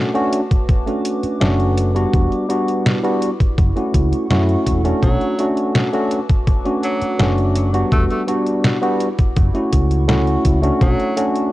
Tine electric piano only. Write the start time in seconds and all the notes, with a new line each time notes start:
Already playing: A3 C#4 D4 F#4
0.14 A3 C#4 D4 F#4
0.86 A3 C#4 D4 F#4
1.40 A3 C#4 D4 F#4
1.94 G3 B3 D4 F#4
2.49 G3 B3 D4 F#4
3.03 G3 B3 D4 F#4
3.76 A3 C#4 E4 F#4
4.30 A3 C#4 E4 F#4
4.84 A3 C#4 D4 F#4
5.39 A3 C#4 D4 F#4
5.93 A3 C#4 D4 F#4
6.65 A3 C#4 D4 F#4
7.19 A3 C#4 D4 F#4
7.73 G3 B3 D4 F#4
8.27 G3 B3 D4 F#4
8.81 G3 B3 D4 F#4
9.54 A3 C#4 E4 F#4
10.08 A3 C#4 E4 F#4
10.62 A3 C#4 D4 F#4
11.16 A3 C#4 D4 F#4